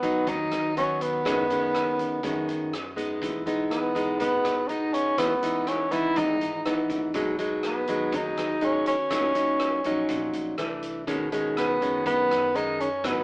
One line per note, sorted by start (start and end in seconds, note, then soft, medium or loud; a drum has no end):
0.00 0.25 D#2 medium
0.00 0.25 G#2 soft
0.00 0.72 F#3 medium
0.00 0.30 B3 medium
0.00 0.73 B3 medium
0.00 0.73 D#4 medium
0.00 closed hi-hat soft
0.27 0.50 D#2 medium
0.27 1.23 D#3 soft
0.27 0.77 D#4 loud
0.27 kick soft
0.27 closed hi-hat medium
0.51 1.27 D#2 medium
0.51 cross-stick soft
0.51 closed hi-hat soft
0.76 1.23 F#3 soft
0.76 1.24 B3 medium
0.76 1.03 C#4 medium
0.76 1.24 D#4 medium
0.76 closed hi-hat soft
1.01 2.97 B3 medium
1.01 closed hi-hat soft
1.25 1.95 F#1 medium
1.25 2.21 F#2 medium
1.25 1.46 D#3 medium
1.25 1.46 G#3 medium
1.25 1.46 C#4 medium
1.25 kick soft
1.25 cross-stick medium
1.25 closed hi-hat medium
1.50 2.19 D#3 medium
1.50 2.20 G#3 soft
1.50 2.20 C#4 medium
1.50 closed hi-hat soft
1.75 cross-stick medium
1.75 closed hi-hat soft
1.99 2.22 F#2 medium
1.99 closed hi-hat soft
2.23 3.19 F#2 medium
2.23 2.46 F#2 medium
2.23 2.72 D#3 medium
2.23 2.72 G#3 soft
2.23 2.72 C#4 medium
2.23 kick medium
2.23 closed hi-hat soft
2.48 3.23 F#2 medium
2.48 closed hi-hat soft
2.73 cross-stick medium
2.73 closed hi-hat soft
2.96 3.45 G#3 medium
2.96 3.45 B3 soft
2.96 3.46 D#4 medium
2.96 closed hi-hat soft
3.22 3.91 E1 medium
3.22 4.17 E3 medium
3.22 kick medium
3.22 closed hi-hat medium
3.46 3.91 G#3 medium
3.46 3.91 B3 medium
3.46 3.92 D#4 medium
3.46 closed hi-hat soft
3.70 4.16 B3 medium
3.70 cross-stick soft
3.70 closed hi-hat soft
3.95 4.18 B1 medium
3.95 4.65 G#3 medium
3.95 4.65 B3 medium
3.95 4.65 D#4 medium
3.95 closed hi-hat soft
4.20 4.43 B1 medium
4.20 5.16 B2 medium
4.20 4.69 B3 medium
4.20 kick medium
4.20 closed hi-hat soft
4.45 5.18 B1 medium
4.45 cross-stick medium
4.45 closed hi-hat soft
4.68 5.16 G#3 soft
4.68 5.16 B3 soft
4.68 4.95 D#4 medium
4.68 5.17 D#4 medium
4.68 closed hi-hat soft
4.93 5.20 C#4 medium
4.93 closed hi-hat soft
5.18 5.88 C#2 medium
5.18 6.14 C#3 medium
5.18 5.32 E3 medium
5.18 5.69 B3 medium
5.18 5.33 B3 medium
5.18 5.33 D#4 medium
5.18 kick medium
5.18 cross-stick medium
5.18 closed hi-hat medium
5.43 5.88 E3 medium
5.43 5.88 B3 medium
5.43 5.88 D#4 medium
5.43 closed hi-hat soft
5.67 5.94 C#4 medium
5.67 cross-stick medium
5.67 closed hi-hat soft
5.91 6.14 G#1 medium
5.91 6.61 E3 medium
5.91 6.61 B3 medium
5.91 6.61 D#4 medium
5.91 6.19 E4 loud
5.91 closed hi-hat soft
6.16 6.39 G#1 medium
6.16 7.12 G#2 medium
6.16 6.66 D#4 loud
6.16 kick medium
6.16 closed hi-hat medium
6.41 7.14 G#1 medium
6.41 closed hi-hat soft
6.65 7.13 E3 soft
6.65 7.13 B3 soft
6.65 7.13 D#4 medium
6.65 cross-stick medium
6.65 closed hi-hat soft
6.90 kick soft
6.90 closed hi-hat soft
7.14 7.84 B1 medium
7.14 8.10 B2 medium
7.14 7.35 F#3 medium
7.14 7.35 G#3 medium
7.14 7.35 D#4 medium
7.14 kick medium
7.14 closed hi-hat medium
7.39 7.84 F#3 medium
7.39 7.84 G#3 medium
7.39 7.84 D#4 medium
7.39 closed hi-hat soft
7.63 8.16 B3 medium
7.63 cross-stick medium
7.63 closed hi-hat soft
7.87 8.11 D#2 medium
7.87 8.58 F#3 medium
7.87 8.58 G#3 medium
7.87 8.58 D#4 medium
7.87 closed hi-hat soft
8.12 8.35 D#2 medium
8.12 9.08 B2 soft
8.12 8.66 D#4 loud
8.12 kick soft
8.12 closed hi-hat soft
8.37 9.10 D#2 medium
8.37 cross-stick soft
8.37 closed hi-hat soft
8.61 8.95 F#3 soft
8.61 8.95 G#3 medium
8.61 8.87 C#4 medium
8.61 8.95 D#4 medium
8.61 closed hi-hat soft
8.86 10.55 C#4 medium
8.86 closed hi-hat soft
9.10 9.80 A#1 medium
9.10 10.07 A#2 medium
9.10 9.32 F#3 medium
9.10 9.32 C#4 medium
9.10 9.32 D#4 medium
9.10 kick medium
9.10 cross-stick medium
9.10 closed hi-hat medium
9.35 9.80 F#3 medium
9.35 9.80 C#4 soft
9.35 9.80 D#4 medium
9.35 closed hi-hat soft
9.60 cross-stick medium
9.60 closed hi-hat soft
9.84 10.08 A#1 medium
9.84 10.55 F#3 medium
9.84 10.55 C#4 medium
9.84 10.55 D#4 medium
9.84 closed hi-hat soft
10.09 10.32 A#1 medium
10.09 10.56 A#2 medium
10.09 kick medium
10.09 closed hi-hat medium
10.33 10.57 A#1 medium
10.33 closed hi-hat soft
10.58 11.07 C2 medium
10.58 11.06 E3 soft
10.58 11.06 A3 soft
10.58 11.06 D4 medium
10.58 cross-stick medium
10.58 closed hi-hat soft
10.83 closed hi-hat soft
11.07 11.77 B1 medium
11.07 12.03 B2 medium
11.07 11.28 D#3 medium
11.07 11.28 G#3 medium
11.07 11.28 C#4 medium
11.07 kick medium
11.07 closed hi-hat medium
11.32 11.77 D#3 medium
11.32 11.77 G#3 medium
11.32 11.78 C#4 medium
11.32 closed hi-hat soft
11.57 12.03 B3 medium
11.57 cross-stick medium
11.57 closed hi-hat soft
11.81 12.04 F#2 medium
11.81 12.51 D#3 medium
11.81 12.51 G#3 medium
11.81 12.52 C#4 medium
11.81 closed hi-hat soft
12.05 13.01 F#2 soft
12.05 12.28 F#2 medium
12.05 12.57 B3 loud
12.05 kick medium
12.05 closed hi-hat medium
12.30 13.05 F#2 medium
12.30 cross-stick soft
12.30 closed hi-hat soft
12.55 12.88 D#3 medium
12.55 12.88 G#3 medium
12.55 12.88 C#4 medium
12.55 12.82 D#4 medium
12.55 closed hi-hat soft
12.80 13.07 C#4 medium
12.80 closed hi-hat soft
13.04 13.24 G#1 medium
13.04 13.24 G#2 medium
13.04 13.24 F#3 medium
13.04 13.24 B3 medium
13.04 13.24 D#4 medium
13.04 kick medium
13.04 cross-stick medium
13.04 closed hi-hat medium